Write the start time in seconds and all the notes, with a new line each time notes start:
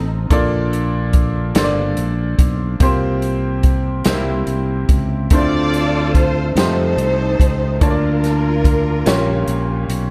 Already playing: A1 C4 D#4 F4 A4 D#5
0.30 A#1 A#2 A#3 D4 F4 A4 D5, kick, closed hi-hat
0.73 closed hi-hat
1.13 kick, closed hi-hat
1.55 G1 A#3 D4 F4 A4 C5, snare, closed hi-hat
1.64 D5
1.97 A#1, closed hi-hat
2.38 B1, kick, closed hi-hat
2.80 C2 C3 A#3 C4 F4 G4 C5, kick, closed hi-hat
3.22 closed hi-hat
3.63 kick, closed hi-hat
4.05 C2 C3 A#3 C4 D#4 G4 C5, snare, closed hi-hat
4.14 E4
4.47 C2, closed hi-hat
4.89 C#2, kick, closed hi-hat
5.30 D2 D3 A3 C4 D4 F4 A4 D5, kick, closed hi-hat
5.34 F4 C5
5.74 closed hi-hat
6.14 C5, kick, closed hi-hat
6.55 F2 G3 D#4 F4 G4 A4 C5, snare, closed hi-hat
6.62 A3
6.97 C2, closed hi-hat
7.40 C#2, kick, closed hi-hat
7.81 D2 D3 A#3 D4 F4 A#4 C#5 A5, kick, closed hi-hat
7.85 F4
7.90 D5
8.24 snare, closed hi-hat
8.64 kick, closed hi-hat
9.05 A#1 A#2 A#3 C#4 F4 G4 C#5, snare, closed hi-hat
9.48 A#1, closed hi-hat
9.88 B1, closed hi-hat